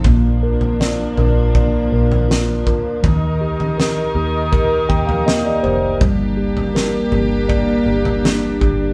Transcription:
<<
  \new Staff \with { instrumentName = "Tine electric piano" } { \time 4/4 \key bes \major \tempo 4 = 81 << { r1 | r2 r8 g''16 f''16 ees''16 d''16 c''8 | r1 | } \\ { bes8 bes'8 d''8 bes'8 d''8 bes'8 f'8 bes'8 | ees8 g'8 bes'8 g'8 bes'8 g'8 bes8 g'8 | g8 g'8 bes'8 g'8 d''8 g'8 d'8 g'8 | } >> }
  \new Staff \with { instrumentName = "String section" } { \time 4/4 \key bes \major <f bes d'>1 | <ees ees' g' bes'>1 | <bes d' g'>1 | }
  \new Staff \with { instrumentName = "Fingered electric bass" } { \clef bass \time 4/4 \key bes \major bes,,4. bes,,4 bes,,4 d,8 | ees,4. ees,4 ees,4 f,,8 | g,,4. g,,4 g,,4 g,,8 | }
  \new DrumStaff \with { instrumentName = "Drums" } \drummode { \time 4/4 <bd tomfh>8. tomfh16 sn8 tomfh8 <bd tomfh>8. tomfh16 sn8 bd8 | <bd tomfh>8. tomfh16 sn4 <bd tomfh>8 bd16 tomfh16 sn8 tomfh8 | <bd tomfh>8. tomfh16 sn8 tomfh8 <bd tomfh>8. tomfh16 sn8 bd8 | }
>>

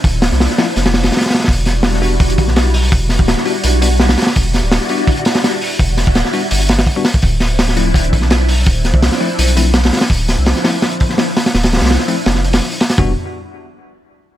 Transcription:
<<
  \new Staff \with { instrumentName = "String machine" } { \time 4/4 \key e \phrygian \tempo 4 = 167 <f c' d' e'>2. r4 | <g d' e' fis'>2. r4 | <g d' e' fis'>2. r4 | <g d' e' fis'>2. r4 |
<g d' e' fis'>2. r4 | <f c' d' e'>2. r4 | <f c' d' e'>2. r4 | <f c' d' e'>2. r4 |
<f c' d' e'>2. r4 | r1 | }
  \new Staff \with { instrumentName = "Tine electric piano" } { \time 4/4 \key e \phrygian r4. <f a c' e'>16 r2 r16 | r4. <g b d' fis'>16 r2 r16 | r4. <g b d' fis'>16 r8. <g b d' fis'>16 r4 r16 | r4. <g b d' fis'>16 r2 r16 |
r4. <g b d' fis'>16 r4. <g b d' fis'>16 r8 | r4. <f a c' e'>16 r2 r16 | r4. <f a c' e'>16 r8. <f a c' e'>16 r4 r16 | r4. <f a c' e'>16 r2 r16 |
r4. <f a c' e'>16 r2 r16 | <g b d' fis'>8 r2. r8 | }
  \new Staff \with { instrumentName = "Sub bass" } { \clef bass \time 4/4 \key e \phrygian d,,8. c,8 r8. f,,4 r4 | e,,2~ e,,8 b,,4. | e,,8. d,,8 r8. b,,4. r8 | e,,8. d,,8 r2 r8. |
e,,8. d,,8 r8. g,,4 r4 | d,,2~ d,,8 b,,4. | d,,8. c,8 r8. b,,4. r8 | d,,8. c,8 r2 r8. |
d,,8. c,8 r8. f,,4 r4 | e,,8 r2. r8 | }
  \new DrumStaff \with { instrumentName = "Drums" } \drummode { \time 4/4 <hho bd>8 <hho sn>16 sn16 <hho sn>16 sn16 <hho sn>8 <hho sn>16 <hho sn>16 <hho sn>16 <hho sn>16 <hho sn>32 <hho sn>32 <hho sn>32 <hho sn>32 <hho sn>32 <hho sn>32 <hho sn>32 <hho sn>32 | <hho bd>8 <hho sn>8 <hho sn>16 sn16 hho8 <hho bd>16 hh16 <hho bd>16 sn16 <hho sn>8 hho8 | <hho bd>8 <hho sn>16 bd16 <hho sn>16 sn16 hho8 hho8 hho8 <hho sn>16 <hho sn>16 <hho sn>32 <hho sn>32 <hho sn>16 | <hho bd>8 <hho sn>8 <hho sn>16 sn16 hho8 <hho bd>16 hh16 <hho sn>16 <hho sn>16 <hho sn>8 hho8 |
<hho bd>8 <hho sn>16 bd16 <hho sn>16 sn16 hho8 hho8 <hho sn>16 <hho sn>16 <hho bd>8 <hho sn>16 bd16 | <hho bd>8 <hho sn>8 <hho sn>16 sn16 hho8 <hho bd>16 hh16 <hho bd>16 sn16 <hho sn>8 hho8 | <hho bd>8 <hho sn>16 bd16 <hho sn>16 sn16 hho8 hho8 hho8 <hho sn>16 <hho sn>16 <hho sn>32 <hho sn>32 <hho sn>16 | <hho bd>8 <hho sn>8 <hho sn>16 sn16 <hho sn>8 <hho sn>16 hh16 <hho bd>16 sn16 <hho sn>8 <hho sn>16 <hho sn>16 |
<hho sn>16 <hho sn>16 <hho sn>32 <hho sn>32 <hho sn>32 <hho sn>32 <hho sn>16 sn16 hho8 <hho sn>16 sn16 hho16 <hho sn>16 sn16 hho16 <hho sn>16 <hho sn>16 | <bd tomfh>4 r4 r4 r4 | }
>>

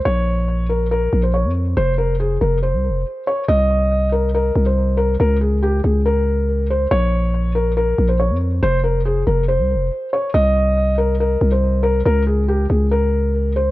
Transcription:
<<
  \new Staff \with { instrumentName = "Felt piano" } { \time 4/4 \key f \minor \tempo 4 = 140 des''4. bes'8 bes'8. c''16 des''8 r8 | c''8 bes'8 aes'8 bes'8 c''4. des''8 | ees''4. bes'8 bes'8. c''8. bes'8 | bes'8 aes'8 g'8 aes'8 bes'4. c''8 |
des''4. bes'8 bes'8. c''16 des''8 r8 | c''8 bes'8 aes'8 bes'8 c''4. des''8 | ees''4. bes'8 bes'8. c''8. bes'8 | bes'8 aes'8 g'8 aes'8 bes'4. c''8 | }
  \new Staff \with { instrumentName = "808-style bass" } { \clef bass \time 4/4 \key f \minor bes,,2~ bes,,8 bes,,8. f,8. | f,,4. f,,8. c,16. f,,16. r4 | c,2~ c,8 c,4. | des,4. des,2~ des,8 |
bes,,2~ bes,,8 bes,,8. f,8. | f,,4. f,,8. c,16. f,,16. r4 | c,2~ c,8 c,4. | des,4. des,2~ des,8 | }
>>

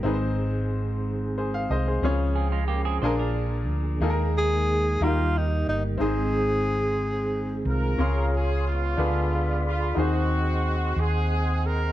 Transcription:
<<
  \new Staff \with { instrumentName = "Upright piano" } { \time 6/8 \key aes \major \tempo 4. = 60 << { r2 <aes' c''>16 f''16 <c'' ees''>16 <aes' c''>16~ | <aes' c''>16 r2 r8. | r2. | r2. |
r2. | r2. | } \\ { <c' ees' aes' ces'' c''>2. | <des' f' aes' des''>4. <d' f' aes' bes'>4. | <bes ees' aes' a' bes'>4. <bes ees' ges' g' bes'>4. | <c' ees' aes' c''>2. |
<des' f' aes' c'''>4. <d' f' aes' b'>4. | <ees' ges' aes' c''>2. | } >> }
  \new Staff \with { instrumentName = "Upright piano" } { \clef bass \time 6/8 \key aes \major aes,4. r4. | des4. bes,4. | ees4. ees4. | aes,4. r4. |
des4. d4. | ees4. r4. | }
  \new Staff \with { instrumentName = "Clean electric guitar" } { \time 6/8 \key aes \major r2. | r8 <c' aes'>16 <aes f'>16 <bes g'>16 <c' aes'>16 c''16 <d' bes'>4~ <d' bes'>16 | r2. | r2. |
r2. | r2. | }
  \new Staff \with { instrumentName = "Horn section" } { \time 6/8 \key aes \major << { r2. | r2. | r2. | r2 r8 bes'8~ |
bes'8 aes'8 f'4. f'8 | ges'4. aes'4 bes'8 | } \\ { r2. | r2. | r2. | r2 r8 f'8~ |
f'4 <aes ces'>4. r8 | c'4. c'4. | } >> }
  \new Staff \with { instrumentName = "Tenor saxophone" } { \time 6/8 \key aes \major r2. | r2. | r8 aes'4 f'8 ees'8 ees'8 | aes'2~ aes'8 r8 |
r2. | r2. | }
  \new Staff \with { instrumentName = "Tonewheel organ" } { \time 6/8 \key aes \major << { aes'2.~ | aes'2.~ | aes'4. g'4. | aes'2. |
c'''4. b''4. | c'''2. | } \\ { c'2. | des'4. d'4. | bes2. | c'2. |
f''4. f''4. | ges''2. | } >> }
  \new Staff \with { instrumentName = "Tonewheel organ" } { \clef bass \time 6/8 \key aes \major << { aes2. | aes4. bes4. | aes4. g4. | aes2. |
des''4. d''4. | ees''2. | } \\ { ees2. | f2. | ees4. ees4.~ | ees2. |
aes'4. aes'4. | aes'2. | } >> }
  \new Staff \with { instrumentName = "Fingered electric bass" } { \clef bass \time 6/8 \key aes \major aes,,2~ aes,,8 c,8 | des,4. bes,,4 d,8 | ees,4. ees,4 g,,8 | aes,,2~ aes,,8 c,8 |
des,4. d,4. | ees,4. ees,4. | }
>>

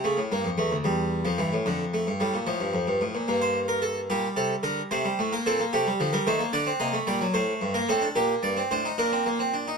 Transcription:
<<
  \new Staff \with { instrumentName = "Harpsichord" } { \time 12/8 \key g \minor \tempo 4. = 74 r1. | r16 c''8 bes'16 a'8 g'8 a'8 bes'8 c''8. bes'16 a'8 g'8. bes'16 c''8 | d''8 ees''8 d''8 c''8. bes'16 a'8 g'8 d''8 c''8 bes'4. | }
  \new Staff \with { instrumentName = "Harpsichord" } { \clef bass \time 12/8 \key g \minor << { a8 bes8 a8 g8. f16 e8 d8 a8 g8 f4. | bes4. g4. a16 g16 a16 bes16 c'16 bes16 a16 g16 f16 g16 a16 bes16 | d'16 c'16 bes16 a16 g16 fis16 a8. bes16 c'16 d'16 bes8. c'16 d'16 ees'16 d'16 c'16 bes16 c'16 d'16 ees'16 | } \\ { cis16 a,16 g,16 f,16 e,16 d,16 e,8. f,16 g,16 a,16 f,8. g,16 a,16 bes,16 a,16 g,16 f,16 g,16 a,16 bes,16 | g,4. bes,8 c8 d8 c8 a,8 bes,8 c8 d8 ees8 | d8 c8 bes,8 a,8 g,8 a,8 bes,8 g,8 a,8 bes,4. | } >> }
>>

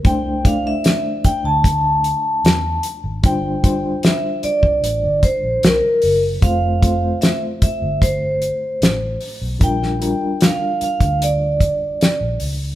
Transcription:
<<
  \new Staff \with { instrumentName = "Vibraphone" } { \time 4/4 \key c \mixolydian \tempo 4 = 75 g''8 f''16 e''8. g''16 a''4.~ a''16 r8 | g''4 e''8 d''4 c''8 bes'8. r16 | f''4 e''8 e''8 c''4. r8 | g''4 f''8 f''8 d''4. r8 | }
  \new Staff \with { instrumentName = "Reed electric piano" } { \time 4/4 \key c \mixolydian <a d' e' c''>8 <a d' e' d''>4. r2 | <g d' f' c''>8 <g d' f' c''>4. r2 | <a c' f' c''>8 <a c' f' c''>4. r2 | <g d' f' bes'>8 <g d' f' bes'>4. r2 | }
  \new Staff \with { instrumentName = "Fingered electric bass" } { \clef bass \time 4/4 \key c \mixolydian c,4 r8. d,4 r16 e,8 r16 aes,,16 | g,,4 r8. c,16 a,,16 g,,16 r16 bes,,16 c,16 r16 fis,,8 | f,,4 r8. g,,4 r16 a,,8 r16 b,,16 | bes,,8. r4 d,4 r8 bes,,16 des,8 | }
  \new DrumStaff \with { instrumentName = "Drums" } \drummode { \time 4/4 <hh bd>8 <hh bd>8 <hh sn>8 <hh bd>8 <hh bd>8 hh8 <hh sn>8 hh8 | <hh bd>8 <hh bd>8 <hh sn>8 hh16 bd16 hh8 <hh bd>8 <hh sn>8 hho8 | <hh bd>8 <hh bd>8 <hh sn>8 <hh bd>8 <hh bd>8 hh8 <hh sn>8 hho8 | <hh bd>16 sn16 hh8 <hh sn>8 hh16 <hh bd>16 hh8 <hh bd>8 <hh sn>8 hho8 | }
>>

